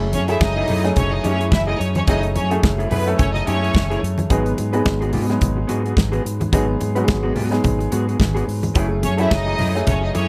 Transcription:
Already playing: F#1 F#3 A3 C#4 E4 G#4
0.01 muted clean electric guitar stroke
0.13 F#2 C#4 C#5, muted clean electric guitar stroke, closed hi-hat, muted conga
0.28 F#3 A3 C#4 E4 G#4 A4 E5, closed hi-hat
0.40 F#1 D#4 D#5, muted clean electric guitar stroke, kick, snare, high conga
0.57 A3 E4 G#4
0.68 F#2 A3 E4 G#4, open hi-hat, low conga
0.83 F#3 A3 C#4 E4 G#4, muted clean electric guitar stroke, snare, closed hi-hat
0.96 F#1 C#4 C#5, muted clean electric guitar stroke, kick, closed hi-hat, low conga
1.11 D#4 D#5, muted clean electric guitar stroke
1.24 F#2 A3 C#4 E4 G#4 C#5, closed hi-hat, muted conga
1.39 A3 E4 G#4, closed hi-hat
1.51 F#1 E4 E5, muted clean electric guitar stroke, kick, snare, high conga
1.66 A3 D#4 E4 G#4 D#5
1.79 F#2 C#4 C#5, closed hi-hat
1.95 C#4 C#5, muted clean electric guitar stroke, closed hi-hat, high conga
2.06 F#1 F#3 A3 C#4 D#4 E4 G#4 D#5, kick, closed hi-hat, muted conga
2.23 muted clean electric guitar stroke, closed hi-hat
2.35 F#2 C#4 C#5, muted clean electric guitar stroke, closed hi-hat, muted conga
2.50 F#3 A3 C#4 E4 G#4 A4, closed hi-hat
2.63 F#1, muted clean electric guitar stroke, kick, snare, high conga
2.78 A3 E4 G#4, closed hi-hat
2.90 F#2 A3 B3 E4 G#4 B4, open hi-hat, low conga
3.06 F#3 A3 C#4 E4 A4, muted clean electric guitar stroke, closed hi-hat
3.18 F#1 C#4 C#5, muted clean electric guitar stroke, kick, closed hi-hat, muted conga, low conga
3.33 D#4 D#5, muted clean electric guitar stroke, closed hi-hat
3.46 F#2 A3 C#4 E4 G#4 C#5, closed hi-hat, muted conga
3.62 A3 E4 G#4, closed hi-hat
3.74 F#1, muted clean electric guitar stroke, kick, snare, high conga
3.90 A3 E4 G#4, closed hi-hat
4.03 F#2, muted clean electric guitar stroke, closed hi-hat
4.18 muted clean electric guitar stroke, closed hi-hat, high conga
4.30 G#1 F#3 G#3 B3 D#4 F#4 G#4, kick, closed hi-hat, muted conga
4.45 muted clean electric guitar stroke, closed hi-hat
4.57 G#2, muted clean electric guitar stroke, closed hi-hat, muted conga
4.73 F#3 G#3 B3 D#4 F#4 G#4 B4, closed hi-hat
4.84 G#1, muted clean electric guitar stroke, kick, snare, high conga
5.01 B3 F#4 G#4, closed hi-hat
5.13 G#2 B3 F#4 G#4, open hi-hat, low conga
5.29 F#3 G#3 B3 D#4 G#4, muted clean electric guitar stroke, snare, closed hi-hat
5.41 G#1, muted clean electric guitar stroke, kick, closed hi-hat, low conga
5.57 muted clean electric guitar stroke
5.68 G#2 B3 F#4 G#4, closed hi-hat, muted conga
5.85 B3 F#4 G#4, closed hi-hat
5.96 G#1, muted clean electric guitar stroke, kick, snare, high conga
6.12 B3 F#4 G#4, closed hi-hat
6.25 G#2, muted clean electric guitar stroke, closed hi-hat
6.40 muted clean electric guitar stroke, closed hi-hat, high conga
6.52 G#1 F#3 G#3 B3 D#4 F#4 G#4, kick, closed hi-hat, muted conga
6.68 muted clean electric guitar stroke
6.80 G#2, muted clean electric guitar stroke, closed hi-hat, muted conga
6.95 F#3 G#3 B3 D#4 F#4 B4, closed hi-hat
7.04 G#4
7.08 G#1, kick, snare, high conga
7.23 B3 F#4 G#4
7.35 G#2 B3 F#4 G#4, open hi-hat, low conga
7.51 F#3 G#3 B3 D#4 G#4, muted clean electric guitar stroke, snare, closed hi-hat
7.64 G#1, muted clean electric guitar stroke, kick, closed hi-hat, muted conga, low conga
7.79 muted clean electric guitar stroke, closed hi-hat
7.92 G#2 B3 F#4 G#4, closed hi-hat, muted conga
8.08 B3 F#4 G#4, closed hi-hat
8.20 G#1, muted clean electric guitar stroke, kick, snare, high conga
8.34 B3 F#4 G#4, closed hi-hat
8.48 G#2, muted clean electric guitar stroke, open hi-hat
8.63 muted clean electric guitar stroke, closed hi-hat, high conga
8.74 F#1 F#3 A3 C#4 E4 G#4, kick, closed hi-hat, muted conga
8.90 muted clean electric guitar stroke
9.02 F#2 C#4 C#5, muted clean electric guitar stroke, closed hi-hat, muted conga
9.17 F#3 A3 C#4 E4 G#4 A4 E5, closed hi-hat
9.31 F#1 D#4 D#5, kick, snare, high conga
9.46 A3 E4 G#4
9.58 F#2 A3 E4 G#4, open hi-hat, low conga
9.74 F#3 A3 C#4 E4 G#4, muted clean electric guitar stroke, snare, closed hi-hat
9.86 F#1 C#4 C#5, muted clean electric guitar stroke, kick, closed hi-hat, low conga
10.01 D#4 D#5, muted clean electric guitar stroke
10.14 F#2 A3 C#4 E4 G#4 C#5, closed hi-hat, muted conga

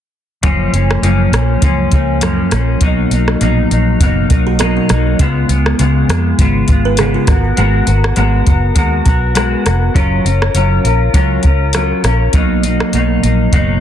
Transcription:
0.43 F#1 F#2 F3 A#3 C#4, kick, closed hi-hat
0.73 F#1 F3 A#3 C#4, closed hi-hat
0.91 cross-stick
1.02 F#1 F#2 F3 A#3 C#4, closed hi-hat
1.32 A#1 F3 A#3 C#4, cross-stick, closed hi-hat
1.61 C#2 F#2 F3 A#3 C#4, kick, closed hi-hat
1.92 C#2 F3 A#3 C#4, kick, closed hi-hat
2.21 F#2 F3 A#3 C#4, cross-stick, closed hi-hat
2.51 A#1 F3 A#3 C#4, cross-stick, closed hi-hat
2.81 B1 B2 F#3 A#3 D#4, kick, closed hi-hat
3.11 B1 F#3 A#3 D#4, closed hi-hat
3.28 cross-stick
3.41 A#1 B2 F#3 A#3 D#4, closed hi-hat
3.71 A#1 F#3 A#3 D#4, closed hi-hat
4.00 F#1 B2 F#3 A#3 D#4, kick, closed hi-hat
4.30 B1 F#3 A#3 D#4, kick, closed hi-hat
4.47 F#4
4.59 B2 F#3 A#3 D#4 A#4, cross-stick, closed hi-hat
4.77 F#4
4.89 B1 F#3 A#3 D#4, cross-stick, closed hi-hat
5.19 C#2 C#3 G#3 B3 F4, kick, closed hi-hat
5.49 C#2 B3 F4, closed hi-hat
5.53 G#3
5.66 cross-stick
5.79 C#2 C#3 G#3 B3 F4, closed hi-hat
6.08 F2 G#3 B3 F4, cross-stick, closed hi-hat
6.38 G#1 C#3 G#3 B3 F4, kick, closed hi-hat
6.68 G#1 G#3 B3 F4, kick, closed hi-hat
6.85 B4
6.97 C#3 G#3 B3 F4 G#4, cross-stick, closed hi-hat
7.14 F4
7.27 G#1 B3 F#4 A#4, kick, cross-stick, closed hi-hat
7.57 G#1 G#3 B3 F#4 A#4, closed hi-hat
7.86 G#1 B3 F#4 A#4, closed hi-hat
8.04 cross-stick
8.16 G#1 G#3 B3 F#4 A#4, closed hi-hat
8.45 F#1 B3 F#4 A#4, kick, closed hi-hat
8.75 D#2 G#3 B3 F#4 A#4, kick, closed hi-hat
9.05 B1 B3 F#4 A#4, kick, closed hi-hat
9.35 G#3 B3 F#4 A#4, cross-stick, closed hi-hat
9.65 F1 B3 F#4 A#4, cross-stick, closed hi-hat
9.94 F#1 F#3 C#4 F4 A#4, kick, closed hi-hat
10.24 F#1 C#4 F4 A#4, closed hi-hat
10.42 cross-stick
10.54 F#1 F#3 C#4 F4 A#4, closed hi-hat
10.84 A#1 C#4 F4 A#4, closed hi-hat
11.14 C#2 F#3 C#4 F4 A#4, kick, closed hi-hat
11.43 C#2 F4 A#4, kick, closed hi-hat
11.47 C#4
11.73 F#3 C#4 F4, cross-stick, closed hi-hat
11.77 A#4
12.04 A#1 C#4 F4 A#4, cross-stick, closed hi-hat
12.33 B1 B2 F#3 A#3 D#4, kick, closed hi-hat
12.63 F#3 A#3 D#4, closed hi-hat
12.80 cross-stick
12.93 B1 B2 F#3 A#3 D#4, closed hi-hat
13.23 A#1 F#3 A#3 D#4, closed hi-hat
13.52 F#1 B2 F#3 A#3 D#4, kick, closed hi-hat

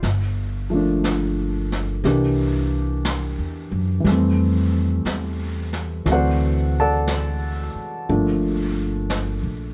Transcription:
0.03 G1, brush sweep, snare
0.70 F3 A3 A#3
0.75 D4
1.04 brush sweep, snare, hi-hat pedal
1.72 snare
2.04 C2 E3 A#3 D4 G4, brush sweep, snare
3.05 brush sweep, snare, hi-hat pedal
3.39 E2
3.72 F#2
4.00 E3 G3
4.05 F2 A3, brush sweep, snare
4.11 C4
5.05 E2, brush sweep, snare, hi-hat pedal
5.73 snare
6.05 D2 E3 F#3 A3, brush sweep, snare
6.10 C4 F#4 C5 D5 F#5
6.80 A4 D5 F#5 A5
7.08 brush sweep, snare, hi-hat pedal
7.75 muted upright bass stroke
8.08 G1 F3 A3 A#3 D4, brush sweep
9.10 brush sweep, snare, hi-hat pedal
9.43 A#1

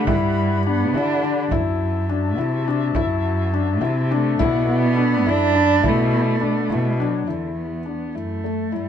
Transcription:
Already playing: A3 G4 F#5 B5
0.07 G2 G3 E4, frame drum
0.37 frame drum
0.67 B3 D4
0.94 D3 D4 E4, frame drum
1.23 D4
1.51 F#2 E4 F#4 E5 A5, frame drum
1.81 frame drum
2.09 D4
2.38 C3 E4, frame drum
2.68 D4
2.95 F#2 E4, frame drum
3.24 frame drum
3.54 D4
3.81 C3 E4, frame drum
4.11 A3 D4
4.39 B2 E4 A4 D5 B5, frame drum
4.44 B3
4.68 B3, frame drum
4.97 D4
5.26 F#2 D4 E4, frame drum
5.55 D4
5.83 B2 E4, frame drum
5.88 A3
6.41 D4, frame drum
6.70 B2 E4, frame drum
7.00 F#3 D4, frame drum
7.27 E2 D3 E4
7.58 B3
7.86 D4
8.15 F#2 A3 E4
8.44 A3
8.72 G2 G3 E4

